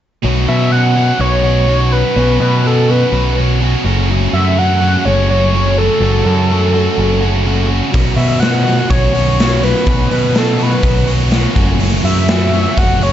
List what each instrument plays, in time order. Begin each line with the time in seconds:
0.23 picked electric bass B1, overdriven electric guitar B2 F#3 B3 C#4 F#4
0.48 picked electric bass B2, overdriven electric guitar B3 C#4 F#4, analog synth lead E5
0.71 overdriven electric guitar F#3 B3 C#4 F#4, analog synth lead F#5
0.96 overdriven electric guitar B2 F#3 B3 C#4 F#4
1.19 picked electric bass B1, overdriven electric guitar F#3 B3 C#4 F#4, analog synth lead C#5
1.43 overdriven electric guitar B3 C#4 F#4, analog synth lead C#5
1.66 overdriven electric guitar B2 F#3 B3 C#4 F#4
1.91 overdriven electric guitar B3 C#4 F#4, analog synth lead B4
2.16 picked electric bass B1, overdriven electric guitar B2 F#3 B3 C#4 F#4
2.40 picked electric bass B2, overdriven electric guitar B3 C#4 F#4, analog synth lead B4
2.65 overdriven electric guitar F#3 B3 C#4 F#4, analog synth lead A4
2.88 overdriven electric guitar B2 F#3 B3 C#4 F#4, analog synth lead B4
3.12 picked electric bass B1, overdriven electric guitar F#3 B3 C#4 F#4
3.37 overdriven electric guitar B3 C#4 F#4
3.60 overdriven electric guitar B2 F#3 B3 C#4 F#4
3.84 picked electric bass F#1, overdriven electric guitar F#2 C#3 F#3 A3 C#4 F#4
4.09 overdriven electric guitar F#2 C#3 F#3 A3 C#4 F#4
4.33 picked electric bass F#2, overdriven electric guitar F#3 A3 C#4 F#4, analog synth lead E5
4.57 overdriven electric guitar F#3 A3 C#4 F#4, analog synth lead F#5
4.81 overdriven electric guitar F#2 C#3 F#3 A3 C#4 F#4
5.05 picked electric bass F#1, overdriven electric guitar F#3 A3 C#4 F#4, analog synth lead C#5
5.29 overdriven electric guitar F#3 A3 C#4 F#4, analog synth lead C#5
5.54 overdriven electric guitar F#2 C#3 F#3 A3 C#4 F#4
5.78 overdriven electric guitar F#3 A3 C#4 F#4, analog synth lead A4
6.00 picked electric bass F#1, overdriven electric guitar F#2 C#3 F#3 A3 C#4 F#4
6.25 picked electric bass F#2, overdriven electric guitar F#3 A3 C#4 F#4
6.50 overdriven electric guitar F#3 A3 C#4 F#4
6.74 overdriven electric guitar F#2 C#3 F#3 A3 C#4 F#4
6.98 picked electric bass F#1, overdriven electric guitar F#3 A3 C#4 F#4
7.20 overdriven electric guitar F#3 A3 C#4 F#4
7.45 overdriven electric guitar F#2 C#3 F#3 A3 C#4 F#4
7.68 overdriven electric guitar F#3 A3 C#4 F#4
7.92 picked electric bass B1, overdriven electric guitar B2 F#3 B3 C#4 F#4, kick, open hi-hat
8.16 picked electric bass B2, overdriven electric guitar B3 C#4 F#4, analog synth lead E5, open hi-hat
8.40 overdriven electric guitar F#3 B3 C#4, analog synth lead F#5, snare, open hi-hat
8.44 overdriven electric guitar F#4
8.66 overdriven electric guitar B2 F#3 B3 C#4 F#4, open hi-hat
8.90 picked electric bass B1, overdriven electric guitar F#3 B3 C#4 F#4, analog synth lead C#5, kick, open hi-hat
9.13 overdriven electric guitar B3 C#4 F#4, analog synth lead C#5, open hi-hat
9.38 overdriven electric guitar B2 F#3 B3 C#4 F#4, snare, open hi-hat
9.62 overdriven electric guitar B3 C#4 F#4, analog synth lead B4, open hi-hat
9.86 picked electric bass B1, overdriven electric guitar B2 F#3 B3 C#4 F#4, kick, open hi-hat
10.11 picked electric bass B2, overdriven electric guitar B3 C#4 F#4, analog synth lead B4, open hi-hat
10.35 overdriven electric guitar F#3 B3 C#4 F#4, analog synth lead A4, snare, open hi-hat
10.59 overdriven electric guitar B2 F#3 B3 C#4 F#4, open hi-hat
10.63 analog synth lead B4
10.83 picked electric bass B1, overdriven electric guitar F#3 B3 C#4 F#4, kick, open hi-hat
11.07 overdriven electric guitar B3 C#4 F#4, open hi-hat
11.30 overdriven electric guitar B2 F#3 B3 C#4 F#4, snare, open hi-hat
11.54 picked electric bass F#1, overdriven electric guitar F#2 C#3 F#3 A3 C#4 F#4, kick, open hi-hat
11.79 overdriven electric guitar F#2 C#3 F#3 A3 C#4 F#4, open hi-hat
12.04 picked electric bass F#2, overdriven electric guitar F#3 A3 C#4 F#4, analog synth lead E5, open hi-hat
12.28 overdriven electric guitar F#3 A3 C#4 F#4, snare, open hi-hat
12.53 overdriven electric guitar F#2 C#3 F#3 A3 C#4 F#4, open hi-hat
12.76 picked electric bass F#1, overdriven electric guitar F#3 A3 C#4 F#4, analog synth lead F#5, kick, open hi-hat
13.01 overdriven electric guitar F#3 A3 C#4 F#4, analog synth lead C#5, open hi-hat